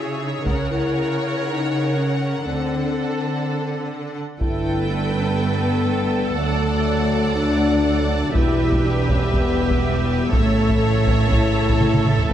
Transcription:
0.00 0.42 C#3 medium
0.00 0.21 E4 medium
0.00 0.42 G#4 medium
0.00 0.43 C#5 medium
0.00 0.42 E5 soft
0.21 0.45 D#4 medium
0.45 0.92 C#2 soft
0.45 2.40 C#3 medium
0.45 0.72 C#4 medium
0.45 2.39 A#4 soft
0.45 2.41 C#5 medium
0.45 4.17 F#5 soft
0.45 taiko soft
0.71 1.43 E4 medium
1.47 1.95 D#4 medium
1.97 2.45 C#4 soft
2.44 2.90 D2 soft
2.44 4.18 D3 soft
2.44 3.89 C4 medium
2.44 4.17 A4 soft
2.44 4.18 A4 soft
4.40 6.34 G1 soft
4.40 6.35 G2 soft
4.40 8.32 D3 medium
4.40 6.35 A3 soft
4.40 4.86 E4 medium
4.40 8.32 A4 soft
4.40 6.35 B4 soft
4.40 6.35 G5 soft
4.40 taiko medium
4.91 5.16 D4 medium
5.15 5.27 C#4 medium
5.28 5.39 B3 medium
5.41 6.37 B3 medium
6.37 8.32 D2 medium
6.37 8.32 D2 soft
6.37 8.32 F#3 soft
6.37 7.37 A3 medium
6.37 8.32 D5 soft
6.37 8.32 F#5 soft
7.36 8.34 D4 medium
8.34 10.29 E1 medium
8.34 10.30 E2 soft
8.34 10.30 B2 medium
8.34 10.30 G3 medium
8.34 8.84 E4 medium
8.34 10.29 G4 soft
8.34 10.30 B4 medium
8.34 12.27 E5 soft
8.34 taiko medium
8.72 taiko medium
8.85 9.10 D4 medium
9.09 9.22 C#4 medium
9.09 taiko medium
9.23 9.30 B3 medium
9.32 10.30 B3 medium
9.32 taiko medium
9.71 taiko medium
10.32 12.26 A1 medium
10.32 12.26 A2 medium
10.32 12.14 C#3 medium
10.32 11.32 A3 medium
10.32 12.33 A3 medium
10.32 12.33 A4 medium
10.32 12.26 C#5 medium
10.32 taiko medium
10.70 taiko medium
11.07 taiko medium
11.32 12.16 E4 medium
11.32 taiko medium
11.70 taiko medium
11.81 taiko mid medium
11.94 taiko mid medium
12.06 taiko mid medium
12.19 taiko low medium
12.29 12.33 G5 medium

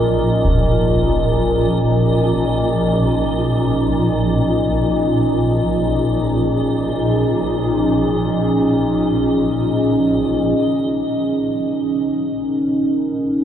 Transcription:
0.00 10.57 A#1 medium
0.00 10.58 A#2 medium
0.00 13.44 C#4 medium
0.00 13.44 D#4 medium
0.00 5.78 A#4 medium
0.00 10.60 D#5 medium
0.45 concert bass drum medium
5.48 13.44 G#4 medium
10.58 13.44 A#1 medium
10.58 13.44 A#2 medium
12.13 13.44 A#4 medium

